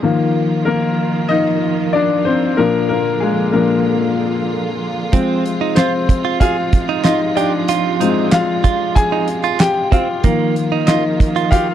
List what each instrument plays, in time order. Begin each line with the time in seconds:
Already playing: string section F3
0.02 upright piano D#3 F3 A#3, string section D#3 A#3 F4
0.65 upright piano A#3 A#4
1.29 upright piano D#4 D#5
1.93 upright piano D4 D5
2.25 upright piano C4 C5
2.57 upright piano A#2 F3 A#3 D4 A#4, string section D3
2.89 upright piano A#3 A#4
3.20 upright piano G#3 G#4
3.53 upright piano A#2 F3 A#3 D4 A#4
5.12 string section C3 F3 G#3, upright piano F3 G#3 C4, clean electric guitar C4, kick, closed hi-hat
5.46 closed hi-hat
5.61 clean electric guitar D#4
5.75 upright piano C4 C5, clean electric guitar F4, snare, clap, closed hi-hat
6.09 kick, closed hi-hat
6.25 clean electric guitar F4
6.40 upright piano F4 F5, clean electric guitar G#4, kick, closed hi-hat
6.73 kick, closed hi-hat
6.89 clean electric guitar D#4
7.04 upright piano D#4 D#5, clean electric guitar F4, snare, clap, closed hi-hat
7.36 upright piano D4 D5, clean electric guitar G4, closed hi-hat
7.68 clean electric guitar F4, closed hi-hat
8.00 upright piano F3 G#3 C4, clean electric guitar D#4, closed hi-hat
8.32 upright piano F4 F5, snare, clap, closed hi-hat
8.64 clean electric guitar F4, kick, closed hi-hat
8.95 upright piano G#4 G#5, kick, closed hi-hat
9.12 clean electric guitar D#4
9.28 closed hi-hat
9.44 clean electric guitar F4, closed hi-hat
9.60 upright piano G4 G5, snare, clap, closed hi-hat
9.92 clean electric guitar C4, upright piano F4 F5, kick, closed hi-hat
10.24 upright piano D#3 F3 A#3, string section D#3 F3 A#3, clean electric guitar A#3, kick, closed hi-hat
10.56 closed hi-hat
10.72 clean electric guitar D#4
10.87 upright piano D#4 D#5, clean electric guitar F4, snare, clap, closed hi-hat
11.20 kick, closed hi-hat
11.36 clean electric guitar F4, closed hi-hat
11.51 upright piano F4 F5, clean electric guitar G4, kick, closed hi-hat